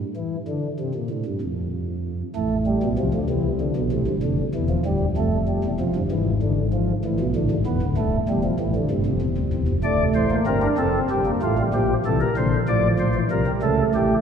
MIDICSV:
0, 0, Header, 1, 2, 480
1, 0, Start_track
1, 0, Key_signature, -1, "minor"
1, 0, Tempo, 626305
1, 1813, Time_signature, 12, 3, 24, 8
1, 10891, End_track
2, 0, Start_track
2, 0, Title_t, "Pipe organ"
2, 0, Program_c, 0, 19
2, 128, Note_on_c, 0, 52, 65
2, 279, Note_off_c, 0, 52, 0
2, 368, Note_on_c, 0, 50, 78
2, 518, Note_off_c, 0, 50, 0
2, 611, Note_on_c, 0, 48, 65
2, 713, Note_off_c, 0, 48, 0
2, 725, Note_on_c, 0, 46, 66
2, 830, Note_off_c, 0, 46, 0
2, 844, Note_on_c, 0, 45, 64
2, 949, Note_off_c, 0, 45, 0
2, 962, Note_on_c, 0, 43, 57
2, 1069, Note_off_c, 0, 43, 0
2, 1084, Note_on_c, 0, 41, 68
2, 1708, Note_off_c, 0, 41, 0
2, 1807, Note_on_c, 0, 57, 70
2, 1808, Note_on_c, 0, 33, 65
2, 1808, Note_on_c, 0, 45, 62
2, 1958, Note_off_c, 0, 57, 0
2, 2043, Note_on_c, 0, 55, 72
2, 2119, Note_off_c, 0, 33, 0
2, 2119, Note_off_c, 0, 45, 0
2, 2169, Note_on_c, 0, 47, 70
2, 2170, Note_on_c, 0, 35, 68
2, 2195, Note_off_c, 0, 55, 0
2, 2274, Note_off_c, 0, 35, 0
2, 2274, Note_off_c, 0, 47, 0
2, 2286, Note_on_c, 0, 36, 57
2, 2287, Note_on_c, 0, 48, 61
2, 2288, Note_on_c, 0, 53, 62
2, 2392, Note_off_c, 0, 36, 0
2, 2393, Note_off_c, 0, 48, 0
2, 2406, Note_on_c, 0, 38, 67
2, 2407, Note_on_c, 0, 50, 67
2, 2439, Note_off_c, 0, 53, 0
2, 2512, Note_off_c, 0, 38, 0
2, 2513, Note_off_c, 0, 50, 0
2, 2526, Note_on_c, 0, 48, 69
2, 2527, Note_on_c, 0, 36, 61
2, 2527, Note_on_c, 0, 52, 69
2, 2677, Note_off_c, 0, 52, 0
2, 2767, Note_on_c, 0, 50, 74
2, 2838, Note_off_c, 0, 48, 0
2, 2839, Note_off_c, 0, 36, 0
2, 2884, Note_on_c, 0, 35, 57
2, 2884, Note_on_c, 0, 47, 59
2, 2917, Note_off_c, 0, 50, 0
2, 2990, Note_off_c, 0, 35, 0
2, 2990, Note_off_c, 0, 47, 0
2, 3004, Note_on_c, 0, 33, 55
2, 3004, Note_on_c, 0, 48, 70
2, 3006, Note_on_c, 0, 45, 59
2, 3110, Note_off_c, 0, 33, 0
2, 3111, Note_off_c, 0, 45, 0
2, 3121, Note_on_c, 0, 43, 60
2, 3123, Note_on_c, 0, 31, 57
2, 3154, Note_off_c, 0, 48, 0
2, 3227, Note_off_c, 0, 43, 0
2, 3228, Note_off_c, 0, 31, 0
2, 3242, Note_on_c, 0, 50, 68
2, 3243, Note_on_c, 0, 29, 63
2, 3244, Note_on_c, 0, 41, 63
2, 3391, Note_off_c, 0, 50, 0
2, 3392, Note_off_c, 0, 29, 0
2, 3393, Note_off_c, 0, 41, 0
2, 3484, Note_on_c, 0, 28, 62
2, 3485, Note_on_c, 0, 40, 62
2, 3485, Note_on_c, 0, 52, 79
2, 3588, Note_off_c, 0, 52, 0
2, 3599, Note_on_c, 0, 53, 72
2, 3633, Note_off_c, 0, 28, 0
2, 3633, Note_off_c, 0, 40, 0
2, 3704, Note_off_c, 0, 53, 0
2, 3719, Note_on_c, 0, 26, 61
2, 3720, Note_on_c, 0, 38, 57
2, 3722, Note_on_c, 0, 55, 80
2, 3870, Note_off_c, 0, 26, 0
2, 3870, Note_off_c, 0, 38, 0
2, 3872, Note_off_c, 0, 55, 0
2, 3965, Note_on_c, 0, 29, 62
2, 3966, Note_on_c, 0, 41, 66
2, 3966, Note_on_c, 0, 57, 71
2, 4115, Note_off_c, 0, 57, 0
2, 4203, Note_on_c, 0, 55, 68
2, 4276, Note_off_c, 0, 29, 0
2, 4276, Note_off_c, 0, 41, 0
2, 4324, Note_on_c, 0, 28, 50
2, 4324, Note_on_c, 0, 40, 56
2, 4353, Note_off_c, 0, 55, 0
2, 4428, Note_off_c, 0, 28, 0
2, 4428, Note_off_c, 0, 40, 0
2, 4445, Note_on_c, 0, 29, 54
2, 4447, Note_on_c, 0, 41, 61
2, 4447, Note_on_c, 0, 53, 72
2, 4549, Note_off_c, 0, 29, 0
2, 4550, Note_off_c, 0, 41, 0
2, 4565, Note_on_c, 0, 31, 59
2, 4565, Note_on_c, 0, 43, 64
2, 4596, Note_off_c, 0, 53, 0
2, 4668, Note_off_c, 0, 31, 0
2, 4669, Note_off_c, 0, 43, 0
2, 4686, Note_on_c, 0, 44, 63
2, 4686, Note_on_c, 0, 52, 76
2, 4688, Note_on_c, 0, 32, 60
2, 4834, Note_off_c, 0, 52, 0
2, 4925, Note_on_c, 0, 50, 75
2, 5073, Note_off_c, 0, 50, 0
2, 5162, Note_on_c, 0, 53, 78
2, 5300, Note_off_c, 0, 44, 0
2, 5301, Note_off_c, 0, 32, 0
2, 5309, Note_off_c, 0, 53, 0
2, 5400, Note_on_c, 0, 52, 76
2, 5401, Note_on_c, 0, 33, 68
2, 5401, Note_on_c, 0, 45, 67
2, 5503, Note_off_c, 0, 33, 0
2, 5503, Note_off_c, 0, 45, 0
2, 5519, Note_on_c, 0, 35, 61
2, 5519, Note_on_c, 0, 47, 61
2, 5548, Note_off_c, 0, 52, 0
2, 5621, Note_off_c, 0, 35, 0
2, 5621, Note_off_c, 0, 47, 0
2, 5639, Note_on_c, 0, 33, 64
2, 5639, Note_on_c, 0, 45, 71
2, 5639, Note_on_c, 0, 50, 89
2, 5741, Note_off_c, 0, 33, 0
2, 5741, Note_off_c, 0, 45, 0
2, 5756, Note_on_c, 0, 32, 64
2, 5757, Note_on_c, 0, 44, 61
2, 5786, Note_off_c, 0, 50, 0
2, 5859, Note_off_c, 0, 32, 0
2, 5859, Note_off_c, 0, 44, 0
2, 5874, Note_on_c, 0, 28, 63
2, 5874, Note_on_c, 0, 59, 78
2, 5875, Note_on_c, 0, 40, 63
2, 5977, Note_off_c, 0, 28, 0
2, 5977, Note_off_c, 0, 40, 0
2, 5993, Note_on_c, 0, 26, 66
2, 5993, Note_on_c, 0, 38, 65
2, 6022, Note_off_c, 0, 59, 0
2, 6096, Note_off_c, 0, 26, 0
2, 6096, Note_off_c, 0, 38, 0
2, 6111, Note_on_c, 0, 36, 61
2, 6112, Note_on_c, 0, 24, 65
2, 6112, Note_on_c, 0, 57, 78
2, 6260, Note_off_c, 0, 36, 0
2, 6261, Note_off_c, 0, 24, 0
2, 6261, Note_off_c, 0, 57, 0
2, 6351, Note_on_c, 0, 40, 71
2, 6353, Note_on_c, 0, 55, 80
2, 6355, Note_on_c, 0, 28, 67
2, 6456, Note_off_c, 0, 55, 0
2, 6469, Note_on_c, 0, 53, 76
2, 6500, Note_off_c, 0, 40, 0
2, 6503, Note_off_c, 0, 28, 0
2, 6573, Note_off_c, 0, 53, 0
2, 6588, Note_on_c, 0, 33, 60
2, 6588, Note_on_c, 0, 45, 67
2, 6589, Note_on_c, 0, 52, 71
2, 6693, Note_off_c, 0, 52, 0
2, 6711, Note_on_c, 0, 50, 77
2, 6737, Note_off_c, 0, 33, 0
2, 6737, Note_off_c, 0, 45, 0
2, 6814, Note_off_c, 0, 50, 0
2, 6826, Note_on_c, 0, 31, 69
2, 6826, Note_on_c, 0, 48, 75
2, 6827, Note_on_c, 0, 43, 67
2, 6931, Note_off_c, 0, 31, 0
2, 6931, Note_off_c, 0, 43, 0
2, 6944, Note_on_c, 0, 29, 67
2, 6945, Note_on_c, 0, 41, 66
2, 7049, Note_off_c, 0, 29, 0
2, 7050, Note_off_c, 0, 41, 0
2, 7062, Note_on_c, 0, 28, 63
2, 7063, Note_on_c, 0, 40, 67
2, 7168, Note_off_c, 0, 28, 0
2, 7169, Note_off_c, 0, 40, 0
2, 7184, Note_on_c, 0, 26, 49
2, 7185, Note_on_c, 0, 38, 52
2, 7290, Note_off_c, 0, 26, 0
2, 7290, Note_off_c, 0, 38, 0
2, 7305, Note_on_c, 0, 28, 58
2, 7307, Note_on_c, 0, 40, 57
2, 7411, Note_off_c, 0, 28, 0
2, 7411, Note_off_c, 0, 40, 0
2, 7420, Note_on_c, 0, 29, 59
2, 7421, Note_on_c, 0, 41, 55
2, 7447, Note_off_c, 0, 48, 0
2, 7528, Note_off_c, 0, 29, 0
2, 7528, Note_off_c, 0, 41, 0
2, 7539, Note_on_c, 0, 26, 71
2, 7539, Note_on_c, 0, 74, 78
2, 7542, Note_on_c, 0, 38, 66
2, 7542, Note_on_c, 0, 57, 75
2, 7691, Note_off_c, 0, 26, 0
2, 7691, Note_off_c, 0, 74, 0
2, 7693, Note_off_c, 0, 38, 0
2, 7780, Note_on_c, 0, 72, 81
2, 7781, Note_on_c, 0, 33, 63
2, 7783, Note_on_c, 0, 45, 64
2, 7855, Note_off_c, 0, 57, 0
2, 7902, Note_on_c, 0, 58, 70
2, 7933, Note_off_c, 0, 33, 0
2, 7933, Note_off_c, 0, 72, 0
2, 7935, Note_off_c, 0, 45, 0
2, 8009, Note_off_c, 0, 58, 0
2, 8021, Note_on_c, 0, 70, 74
2, 8022, Note_on_c, 0, 43, 58
2, 8022, Note_on_c, 0, 60, 59
2, 8023, Note_on_c, 0, 31, 67
2, 8129, Note_off_c, 0, 60, 0
2, 8139, Note_on_c, 0, 62, 70
2, 8173, Note_off_c, 0, 70, 0
2, 8174, Note_off_c, 0, 43, 0
2, 8175, Note_off_c, 0, 31, 0
2, 8248, Note_off_c, 0, 62, 0
2, 8262, Note_on_c, 0, 41, 64
2, 8262, Note_on_c, 0, 69, 82
2, 8263, Note_on_c, 0, 60, 69
2, 8264, Note_on_c, 0, 29, 59
2, 8414, Note_off_c, 0, 41, 0
2, 8414, Note_off_c, 0, 69, 0
2, 8416, Note_off_c, 0, 29, 0
2, 8510, Note_on_c, 0, 31, 67
2, 8510, Note_on_c, 0, 43, 71
2, 8511, Note_on_c, 0, 67, 86
2, 8578, Note_off_c, 0, 60, 0
2, 8631, Note_on_c, 0, 58, 59
2, 8660, Note_off_c, 0, 31, 0
2, 8660, Note_off_c, 0, 43, 0
2, 8661, Note_off_c, 0, 67, 0
2, 8735, Note_off_c, 0, 58, 0
2, 8753, Note_on_c, 0, 33, 62
2, 8755, Note_on_c, 0, 45, 66
2, 8756, Note_on_c, 0, 65, 75
2, 8757, Note_on_c, 0, 57, 68
2, 8859, Note_off_c, 0, 57, 0
2, 8876, Note_on_c, 0, 55, 62
2, 8903, Note_off_c, 0, 33, 0
2, 8904, Note_off_c, 0, 45, 0
2, 8904, Note_off_c, 0, 65, 0
2, 8979, Note_off_c, 0, 55, 0
2, 8995, Note_on_c, 0, 46, 68
2, 8995, Note_on_c, 0, 53, 70
2, 8995, Note_on_c, 0, 67, 77
2, 8997, Note_on_c, 0, 34, 70
2, 9145, Note_off_c, 0, 46, 0
2, 9145, Note_off_c, 0, 53, 0
2, 9145, Note_off_c, 0, 67, 0
2, 9146, Note_off_c, 0, 34, 0
2, 9239, Note_on_c, 0, 48, 65
2, 9239, Note_on_c, 0, 69, 77
2, 9240, Note_on_c, 0, 52, 64
2, 9241, Note_on_c, 0, 36, 66
2, 9341, Note_off_c, 0, 69, 0
2, 9357, Note_on_c, 0, 70, 67
2, 9387, Note_off_c, 0, 48, 0
2, 9388, Note_off_c, 0, 36, 0
2, 9388, Note_off_c, 0, 52, 0
2, 9460, Note_off_c, 0, 70, 0
2, 9482, Note_on_c, 0, 34, 65
2, 9482, Note_on_c, 0, 46, 54
2, 9482, Note_on_c, 0, 50, 56
2, 9482, Note_on_c, 0, 72, 77
2, 9629, Note_off_c, 0, 34, 0
2, 9629, Note_off_c, 0, 46, 0
2, 9629, Note_off_c, 0, 50, 0
2, 9629, Note_off_c, 0, 72, 0
2, 9720, Note_on_c, 0, 74, 77
2, 9722, Note_on_c, 0, 33, 62
2, 9723, Note_on_c, 0, 45, 59
2, 9723, Note_on_c, 0, 53, 63
2, 9868, Note_off_c, 0, 74, 0
2, 9870, Note_off_c, 0, 33, 0
2, 9870, Note_off_c, 0, 45, 0
2, 9958, Note_on_c, 0, 46, 58
2, 9958, Note_on_c, 0, 72, 79
2, 9960, Note_on_c, 0, 34, 57
2, 10032, Note_off_c, 0, 53, 0
2, 10078, Note_on_c, 0, 52, 51
2, 10108, Note_off_c, 0, 46, 0
2, 10108, Note_off_c, 0, 72, 0
2, 10109, Note_off_c, 0, 34, 0
2, 10182, Note_off_c, 0, 52, 0
2, 10199, Note_on_c, 0, 36, 60
2, 10200, Note_on_c, 0, 70, 66
2, 10201, Note_on_c, 0, 48, 60
2, 10201, Note_on_c, 0, 53, 58
2, 10304, Note_off_c, 0, 53, 0
2, 10322, Note_on_c, 0, 55, 55
2, 10349, Note_off_c, 0, 36, 0
2, 10350, Note_off_c, 0, 48, 0
2, 10350, Note_off_c, 0, 70, 0
2, 10425, Note_off_c, 0, 55, 0
2, 10442, Note_on_c, 0, 69, 71
2, 10443, Note_on_c, 0, 37, 70
2, 10443, Note_on_c, 0, 49, 70
2, 10443, Note_on_c, 0, 57, 63
2, 10592, Note_off_c, 0, 37, 0
2, 10592, Note_off_c, 0, 49, 0
2, 10592, Note_off_c, 0, 69, 0
2, 10688, Note_on_c, 0, 45, 62
2, 10688, Note_on_c, 0, 67, 78
2, 10690, Note_on_c, 0, 33, 58
2, 10837, Note_off_c, 0, 45, 0
2, 10837, Note_off_c, 0, 67, 0
2, 10838, Note_off_c, 0, 33, 0
2, 10891, Note_off_c, 0, 57, 0
2, 10891, End_track
0, 0, End_of_file